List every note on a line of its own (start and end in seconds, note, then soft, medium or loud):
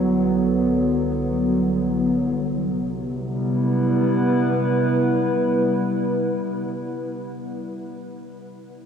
0.00 2.39 C2 medium
0.00 2.40 D3 medium
0.00 2.40 F#3 medium
0.00 2.39 B3 medium
0.00 2.39 F#4 medium
0.00 2.38 B4 medium
2.41 6.97 C3 medium
2.58 7.15 G3 medium
2.75 7.31 B3 medium
2.90 7.47 E4 medium
3.07 7.58 B4 medium